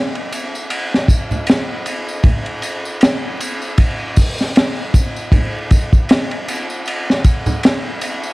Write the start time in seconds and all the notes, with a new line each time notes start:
0.15 ride
0.32 ride, tambourine
0.55 tambourine
0.70 ride, tambourine
0.94 snare
1.08 kick, ride, tambourine
1.31 tambourine, low conga
1.47 snare, ride, tambourine
1.86 ride, tambourine
2.09 tambourine
2.24 kick, ride, tambourine, low conga
2.46 ride
2.62 ride, tambourine
2.85 tambourine
3.01 snare, ride, tambourine
3.40 ride, tambourine
3.62 tambourine
3.78 kick, ride, tambourine
4.16 kick, open hi-hat, tambourine
4.38 snare, tambourine
4.55 snare, ride, tambourine
4.94 kick, ride, tambourine
5.16 tambourine
5.32 kick, ride, tambourine, low conga
5.71 kick, ride, tambourine
5.93 kick, tambourine
6.09 snare, ride, tambourine
6.31 ride
6.48 ride, tambourine
6.70 tambourine
6.86 ride, tambourine
7.10 snare
7.24 kick, ride, tambourine
7.46 tambourine, low conga
7.63 snare, ride, tambourine
8.01 ride, tambourine
8.23 tambourine